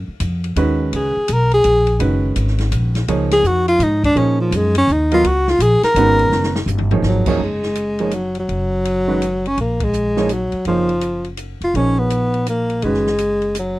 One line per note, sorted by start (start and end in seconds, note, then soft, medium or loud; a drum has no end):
0.08 muted upright bass stroke soft
0.20 0.55 F2 loud
0.20 hi-hat pedal medium
0.20 ride medium
0.44 ride medium
0.56 0.91 D#2 medium
0.56 1.11 D#3 medium
0.56 1.11 G#3 medium
0.56 1.12 C#4 medium
0.56 1.12 F#4 medium
0.56 1.12 B4 medium
0.56 ride medium
0.93 1.14 C#2 medium
0.93 1.34 G#4 medium
0.93 ride medium
1.16 muted upright bass stroke soft
1.28 1.64 B1 medium
1.28 hi-hat pedal medium
1.28 ride medium
1.33 1.53 A#4 loud
1.51 1.98 G#4 loud
1.51 ride soft
1.64 1.99 A#1 medium
1.64 hi-hat pedal medium
1.64 ride medium
1.87 ride soft
1.99 2.35 F#1 medium
1.99 3.00 D#3 medium
1.99 3.00 G#3 medium
1.99 3.01 C#4 medium
1.99 3.00 F#4 medium
1.99 3.00 B4 medium
1.99 ride medium
2.36 2.71 G#1 loud
2.36 hi-hat pedal medium
2.36 ride medium
2.47 snare soft
2.58 snare soft
2.58 ride soft
2.72 3.07 A#1 medium
2.72 hi-hat pedal medium
2.72 ride medium
2.95 snare soft
2.95 ride soft
3.08 3.43 C#2 medium
3.08 4.09 F3 medium
3.08 4.09 A#3 medium
3.08 4.09 D#4 medium
3.08 4.09 G#4 medium
3.08 4.09 C#5 medium
3.08 ride medium
3.31 3.48 G#4 loud
3.31 snare medium
3.31 ride medium
3.43 3.79 F2 medium
3.43 3.68 F#4 loud
3.43 hi-hat pedal medium
3.68 3.85 F4 loud
3.68 ride soft
3.79 4.14 G#2 loud
3.79 hi-hat pedal medium
3.79 ride medium
3.83 4.04 D#4 medium
4.04 4.20 D4 loud
4.04 kick medium
4.04 ride medium
4.15 4.50 A#2 medium
4.15 4.71 F3 medium
4.15 4.70 A#3 medium
4.15 4.40 C#4 medium
4.15 4.71 D#4 medium
4.15 4.71 G#4 medium
4.15 4.71 C#5 medium
4.15 ride medium
4.41 4.57 F3 medium
4.51 4.86 F#2 medium
4.51 hi-hat pedal medium
4.51 ride medium
4.56 4.77 G#3 medium
4.75 4.94 C#4 loud
4.75 ride medium
4.87 5.23 D#2 loud
4.87 hi-hat pedal medium
4.92 5.13 D#4 medium
5.11 5.23 F#3 medium
5.11 5.23 B3 medium
5.11 5.23 F4 medium
5.11 5.28 F4 loud
5.11 5.23 A#4 medium
5.11 5.23 D#5 medium
5.11 ride medium
5.24 5.58 C#2 medium
5.24 5.51 F#4 loud
5.24 ride medium
5.47 5.63 F4 loud
5.47 snare medium
5.59 5.81 A#1 medium
5.59 5.83 G#4 loud
5.59 hi-hat pedal medium
5.59 ride medium
5.82 6.64 A#4 loud
5.82 muted upright bass stroke soft
5.82 snare medium
5.82 ride medium
5.94 6.29 G#1 loud
5.94 6.51 D#3 medium
5.94 6.51 G#3 medium
5.94 6.51 B3 medium
5.94 6.51 C#4 medium
5.94 6.51 F#4 medium
5.94 hi-hat pedal medium
5.94 ride medium
6.19 ride soft
6.30 6.66 F#1 medium
6.30 snare medium
6.43 snare medium
6.55 snare medium
6.66 7.02 G1 medium
6.66 floor tom medium
6.66 hi-hat pedal medium
6.78 floor tom medium
6.91 7.25 F3 medium
6.91 7.25 A#3 medium
6.91 7.25 D#4 medium
6.91 7.25 G#4 medium
6.91 7.25 C#5 medium
6.91 floor tom loud
7.02 7.25 G#1 medium
7.02 snare medium
7.08 7.40 F#3 medium
7.26 7.39 F#2 medium
7.26 7.39 F3 medium
7.26 7.39 A#3 medium
7.26 7.39 D#4 medium
7.26 7.39 G#4 medium
7.26 7.39 C#5 medium
7.26 muted upright bass stroke soft
7.26 kick medium
7.26 crash medium
7.39 8.44 F#1 medium
7.44 8.15 G#3 medium
7.63 snare soft
7.75 hi-hat pedal medium
7.75 ride medium
7.99 8.11 F3 medium
7.99 8.11 A#3 medium
7.99 8.12 D#4 soft
7.99 8.11 G#4 soft
7.99 8.12 C#5 medium
7.99 ride soft
8.11 8.36 F#3 medium
8.11 hi-hat pedal medium
8.11 ride medium
8.35 ride soft
8.39 9.49 F#3 medium
8.49 9.53 F#1 medium
8.49 ride soft
8.85 ride medium
9.08 9.19 D#3 medium
9.08 9.19 G#3 medium
9.08 9.19 C#4 medium
9.08 9.20 F#4 medium
9.08 9.20 B4 medium
9.22 hi-hat pedal soft
9.22 ride medium
9.45 9.59 C#4 medium
9.45 ride soft
9.57 10.49 A#1 medium
9.57 9.86 A#3 medium
9.57 ride medium
9.80 kick medium
9.80 ride medium
9.84 10.34 G#3 medium
9.93 hi-hat pedal medium
10.17 10.28 F3 medium
10.17 10.29 A#3 medium
10.17 10.28 D#4 medium
10.17 10.29 G#4 medium
10.17 10.29 C#5 medium
10.17 snare soft
10.29 10.67 F#3 medium
10.29 hi-hat pedal medium
10.29 ride medium
10.52 muted upright bass stroke soft
10.52 ride soft
10.65 11.58 F#1 medium
10.65 10.88 F3 medium
10.65 11.29 F3 medium
10.65 10.88 A#3 soft
10.65 10.88 D#4 medium
10.65 10.88 G#4 soft
10.65 10.88 C#5 medium
10.65 ride medium
10.89 ride soft
11.01 hi-hat pedal soft
11.01 ride medium
11.24 ride soft
11.37 hi-hat pedal medium
11.37 ride medium
11.61 11.73 F1 medium
11.61 11.78 F4 medium
11.61 ride soft
11.74 12.79 A#1 medium
11.74 12.76 F3 medium
11.74 12.00 C#4 medium
11.74 12.76 D#4 soft
11.74 12.76 G#4 soft
11.74 12.76 A#4 soft
11.74 12.77 C#5 medium
11.74 ride medium
11.99 12.48 B3 medium
12.10 hi-hat pedal soft
12.10 ride medium
12.34 ride soft
12.46 12.85 A#3 medium
12.46 hi-hat pedal medium
12.46 ride medium
12.70 ride soft
12.82 13.79 F#1 medium
12.82 13.05 D#3 soft
12.82 13.56 G#3 medium
12.82 13.05 G#3 soft
12.82 13.05 C#4 medium
12.82 13.05 F#4 soft
12.82 13.05 B4 medium
12.82 ride medium
12.94 snare soft
13.07 snare soft
13.18 hi-hat pedal soft
13.18 ride medium
13.42 ride soft
13.55 hi-hat pedal medium
13.55 ride medium
13.59 13.79 F#3 medium